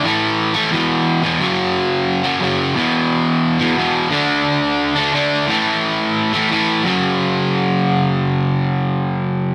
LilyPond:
\new Staff \with { instrumentName = "Distorted electric guitar" } { \clef bass \time 4/4 \key fis \minor \tempo 4 = 176 <a, e a>4. <a, e a>8 <e, b, e>4. <e, b, e>8 | <fis, cis fis>2~ <fis, cis fis>8 <fis, cis fis>8 <fis, cis fis>4 | <e, b, e>2~ <e, b, e>8 <e, b, e>8 <e, b, e>4 | <d a d'>2~ <d a d'>8 <d a d'>8 <d a d'>4 |
<a, e a>2~ <a, e a>8 <a, e a>8 <a, e a>4 | <fis, cis fis>1~ | <fis, cis fis>1 | }